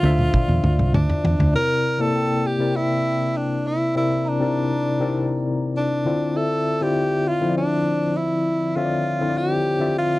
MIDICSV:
0, 0, Header, 1, 6, 480
1, 0, Start_track
1, 0, Tempo, 601202
1, 1234, Time_signature, 4, 2, 24, 8
1, 8137, End_track
2, 0, Start_track
2, 0, Title_t, "Vibraphone"
2, 0, Program_c, 0, 11
2, 270, Note_on_c, 0, 74, 54
2, 1366, Note_off_c, 0, 74, 0
2, 1716, Note_on_c, 0, 79, 51
2, 2810, Note_off_c, 0, 79, 0
2, 3395, Note_on_c, 0, 82, 76
2, 4489, Note_off_c, 0, 82, 0
2, 5073, Note_on_c, 0, 76, 51
2, 6166, Note_off_c, 0, 76, 0
2, 8137, End_track
3, 0, Start_track
3, 0, Title_t, "Tenor saxophone"
3, 0, Program_c, 1, 66
3, 0, Note_on_c, 1, 65, 105
3, 722, Note_off_c, 1, 65, 0
3, 755, Note_on_c, 1, 62, 81
3, 1203, Note_off_c, 1, 62, 0
3, 1241, Note_on_c, 1, 70, 109
3, 1608, Note_on_c, 1, 69, 97
3, 1620, Note_off_c, 1, 70, 0
3, 1968, Note_on_c, 1, 67, 89
3, 1980, Note_off_c, 1, 69, 0
3, 2204, Note_on_c, 1, 64, 101
3, 2216, Note_off_c, 1, 67, 0
3, 2687, Note_on_c, 1, 62, 84
3, 2699, Note_off_c, 1, 64, 0
3, 2929, Note_on_c, 1, 64, 85
3, 2941, Note_off_c, 1, 62, 0
3, 3164, Note_off_c, 1, 64, 0
3, 3169, Note_on_c, 1, 64, 87
3, 3421, Note_on_c, 1, 62, 85
3, 3433, Note_off_c, 1, 64, 0
3, 4370, Note_off_c, 1, 62, 0
3, 4607, Note_on_c, 1, 62, 78
3, 5084, Note_on_c, 1, 69, 89
3, 5096, Note_off_c, 1, 62, 0
3, 5448, Note_on_c, 1, 67, 86
3, 5460, Note_off_c, 1, 69, 0
3, 5811, Note_on_c, 1, 65, 87
3, 5823, Note_off_c, 1, 67, 0
3, 6041, Note_off_c, 1, 65, 0
3, 6046, Note_on_c, 1, 62, 94
3, 6518, Note_on_c, 1, 64, 88
3, 6530, Note_off_c, 1, 62, 0
3, 6997, Note_on_c, 1, 65, 92
3, 7009, Note_off_c, 1, 64, 0
3, 7487, Note_on_c, 1, 67, 100
3, 7498, Note_off_c, 1, 65, 0
3, 7959, Note_off_c, 1, 67, 0
3, 7972, Note_on_c, 1, 65, 103
3, 8137, Note_off_c, 1, 65, 0
3, 8137, End_track
4, 0, Start_track
4, 0, Title_t, "Tine electric piano"
4, 0, Program_c, 2, 4
4, 0, Control_c, 2, 64, 127
4, 0, Note_on_c, 2, 50, 66
4, 0, Note_on_c, 2, 62, 61
4, 0, Note_on_c, 2, 64, 49
4, 0, Note_on_c, 2, 65, 62
4, 0, Note_on_c, 2, 72, 60
4, 0, Note_on_c, 2, 76, 74
4, 24, Note_off_c, 2, 50, 0
4, 24, Note_on_c, 2, 50, 81
4, 28, Note_off_c, 2, 62, 0
4, 28, Note_on_c, 2, 62, 72
4, 30, Note_off_c, 2, 65, 0
4, 30, Note_on_c, 2, 65, 74
4, 36, Note_off_c, 2, 72, 0
4, 36, Note_on_c, 2, 72, 75
4, 42, Note_off_c, 2, 76, 0
4, 42, Note_on_c, 2, 76, 91
4, 929, Note_off_c, 2, 50, 0
4, 931, Note_off_c, 2, 62, 0
4, 932, Note_off_c, 2, 65, 0
4, 934, Note_off_c, 2, 72, 0
4, 938, Note_off_c, 2, 76, 0
4, 1230, Note_on_c, 2, 48, 73
4, 1233, Note_on_c, 2, 60, 61
4, 1237, Note_off_c, 2, 64, 0
4, 1237, Note_on_c, 2, 64, 66
4, 1242, Note_on_c, 2, 70, 65
4, 1245, Control_c, 2, 64, 0
4, 1247, Note_on_c, 2, 73, 60
4, 1293, Note_off_c, 2, 73, 0
4, 1404, Control_c, 2, 64, 127
4, 1570, Note_off_c, 2, 48, 0
4, 1572, Note_off_c, 2, 60, 0
4, 1573, Note_off_c, 2, 64, 0
4, 1576, Note_off_c, 2, 70, 0
4, 1581, Note_on_c, 2, 48, 71
4, 1588, Note_on_c, 2, 60, 61
4, 1592, Note_on_c, 2, 64, 65
4, 1596, Note_on_c, 2, 58, 66
4, 1604, Note_on_c, 2, 74, 79
4, 2039, Note_off_c, 2, 48, 0
4, 2042, Note_off_c, 2, 60, 0
4, 2044, Note_off_c, 2, 64, 0
4, 2046, Note_off_c, 2, 58, 0
4, 2050, Note_off_c, 2, 74, 0
4, 2066, Note_on_c, 2, 48, 70
4, 2072, Note_on_c, 2, 60, 62
4, 2077, Note_on_c, 2, 64, 60
4, 2079, Note_on_c, 2, 70, 62
4, 2085, Note_on_c, 2, 74, 75
4, 2971, Note_off_c, 2, 48, 0
4, 2974, Note_off_c, 2, 60, 0
4, 2977, Note_off_c, 2, 64, 0
4, 2978, Note_off_c, 2, 70, 0
4, 2981, Note_off_c, 2, 74, 0
4, 3152, Note_on_c, 2, 48, 70
4, 3154, Note_on_c, 2, 60, 69
4, 3159, Note_on_c, 2, 64, 66
4, 3164, Note_on_c, 2, 70, 67
4, 3167, Note_on_c, 2, 74, 76
4, 3492, Note_off_c, 2, 48, 0
4, 3494, Note_off_c, 2, 60, 0
4, 3496, Note_off_c, 2, 64, 0
4, 3498, Note_off_c, 2, 70, 0
4, 3500, Note_off_c, 2, 74, 0
4, 3516, Note_on_c, 2, 48, 70
4, 3516, Note_on_c, 2, 60, 62
4, 3524, Note_on_c, 2, 63, 54
4, 3530, Note_on_c, 2, 70, 68
4, 3533, Note_on_c, 2, 74, 78
4, 3573, Note_off_c, 2, 63, 0
4, 3575, Note_on_c, 2, 64, 68
4, 3967, Note_off_c, 2, 48, 0
4, 3967, Note_off_c, 2, 60, 0
4, 3974, Note_off_c, 2, 70, 0
4, 3975, Note_off_c, 2, 74, 0
4, 3992, Note_on_c, 2, 48, 79
4, 3996, Note_off_c, 2, 64, 0
4, 3998, Note_on_c, 2, 60, 78
4, 4002, Note_on_c, 2, 63, 59
4, 4007, Note_on_c, 2, 70, 71
4, 4011, Note_on_c, 2, 74, 89
4, 4053, Note_off_c, 2, 63, 0
4, 4054, Note_on_c, 2, 64, 72
4, 4829, Note_off_c, 2, 60, 0
4, 4830, Note_off_c, 2, 64, 0
4, 4832, Note_on_c, 2, 50, 77
4, 4835, Note_off_c, 2, 48, 0
4, 4839, Note_on_c, 2, 60, 73
4, 4839, Note_on_c, 2, 64, 71
4, 4840, Note_off_c, 2, 74, 0
4, 4842, Note_on_c, 2, 65, 70
4, 4843, Note_off_c, 2, 70, 0
4, 4849, Control_c, 2, 64, 0
4, 4850, Note_on_c, 2, 74, 81
4, 5011, Control_c, 2, 64, 127
4, 5396, Note_off_c, 2, 50, 0
4, 5400, Note_off_c, 2, 60, 0
4, 5400, Note_off_c, 2, 64, 0
4, 5401, Note_off_c, 2, 65, 0
4, 5405, Note_off_c, 2, 74, 0
4, 5437, Note_on_c, 2, 50, 72
4, 5438, Note_on_c, 2, 60, 70
4, 5448, Note_on_c, 2, 64, 69
4, 5451, Note_on_c, 2, 65, 68
4, 5451, Note_on_c, 2, 74, 83
4, 5886, Note_off_c, 2, 50, 0
4, 5887, Note_off_c, 2, 60, 0
4, 5892, Note_off_c, 2, 64, 0
4, 5893, Note_off_c, 2, 65, 0
4, 5893, Note_off_c, 2, 74, 0
4, 5917, Note_on_c, 2, 50, 71
4, 5919, Note_on_c, 2, 60, 67
4, 5925, Note_on_c, 2, 64, 67
4, 5931, Note_on_c, 2, 53, 63
4, 5932, Note_on_c, 2, 72, 61
4, 5977, Note_off_c, 2, 72, 0
4, 5983, Note_on_c, 2, 74, 76
4, 6814, Note_off_c, 2, 50, 0
4, 6815, Note_off_c, 2, 60, 0
4, 6818, Note_off_c, 2, 64, 0
4, 6820, Note_off_c, 2, 53, 0
4, 6847, Note_off_c, 2, 74, 0
4, 6992, Note_on_c, 2, 50, 76
4, 6997, Note_on_c, 2, 60, 66
4, 7004, Note_on_c, 2, 76, 66
4, 7007, Note_on_c, 2, 65, 70
4, 7012, Note_on_c, 2, 73, 64
4, 7056, Note_off_c, 2, 73, 0
4, 7064, Note_on_c, 2, 74, 81
4, 7330, Note_off_c, 2, 50, 0
4, 7332, Note_off_c, 2, 60, 0
4, 7335, Note_off_c, 2, 76, 0
4, 7337, Note_off_c, 2, 65, 0
4, 7349, Note_on_c, 2, 50, 78
4, 7352, Note_on_c, 2, 60, 67
4, 7361, Note_on_c, 2, 64, 67
4, 7363, Note_on_c, 2, 65, 62
4, 7365, Note_off_c, 2, 74, 0
4, 7370, Note_on_c, 2, 72, 61
4, 7414, Note_off_c, 2, 72, 0
4, 7421, Note_on_c, 2, 74, 81
4, 7799, Note_off_c, 2, 50, 0
4, 7801, Note_off_c, 2, 60, 0
4, 7805, Note_off_c, 2, 64, 0
4, 7806, Note_off_c, 2, 65, 0
4, 7820, Note_on_c, 2, 50, 67
4, 7827, Note_off_c, 2, 74, 0
4, 7827, Note_on_c, 2, 60, 61
4, 7831, Note_on_c, 2, 76, 62
4, 7836, Note_on_c, 2, 65, 63
4, 7837, Note_on_c, 2, 74, 75
4, 8137, Note_off_c, 2, 50, 0
4, 8137, Note_off_c, 2, 60, 0
4, 8137, Note_off_c, 2, 65, 0
4, 8137, Note_off_c, 2, 74, 0
4, 8137, Note_off_c, 2, 76, 0
4, 8137, End_track
5, 0, Start_track
5, 0, Title_t, "Fingered electric bass"
5, 0, Program_c, 3, 33
5, 24, Note_on_c, 3, 38, 86
5, 222, Note_off_c, 3, 38, 0
5, 385, Note_on_c, 3, 40, 80
5, 486, Note_off_c, 3, 40, 0
5, 506, Note_on_c, 3, 38, 82
5, 606, Note_off_c, 3, 38, 0
5, 625, Note_on_c, 3, 36, 75
5, 726, Note_off_c, 3, 36, 0
5, 743, Note_on_c, 3, 38, 81
5, 845, Note_off_c, 3, 38, 0
5, 991, Note_on_c, 3, 40, 71
5, 1090, Note_off_c, 3, 40, 0
5, 1112, Note_on_c, 3, 38, 79
5, 1210, Note_off_c, 3, 38, 0
5, 8137, End_track
6, 0, Start_track
6, 0, Title_t, "Drums"
6, 28, Note_on_c, 9, 48, 74
6, 108, Note_off_c, 9, 48, 0
6, 148, Note_on_c, 9, 47, 62
6, 228, Note_off_c, 9, 47, 0
6, 268, Note_on_c, 9, 47, 72
6, 270, Note_on_c, 9, 36, 79
6, 348, Note_off_c, 9, 47, 0
6, 350, Note_off_c, 9, 36, 0
6, 388, Note_on_c, 9, 47, 69
6, 468, Note_off_c, 9, 47, 0
6, 508, Note_on_c, 9, 45, 78
6, 588, Note_off_c, 9, 45, 0
6, 632, Note_on_c, 9, 45, 69
6, 712, Note_off_c, 9, 45, 0
6, 753, Note_on_c, 9, 45, 90
6, 833, Note_off_c, 9, 45, 0
6, 875, Note_on_c, 9, 43, 74
6, 955, Note_off_c, 9, 43, 0
6, 995, Note_on_c, 9, 43, 95
6, 1075, Note_off_c, 9, 43, 0
6, 1117, Note_on_c, 9, 43, 82
6, 1197, Note_off_c, 9, 43, 0
6, 8137, End_track
0, 0, End_of_file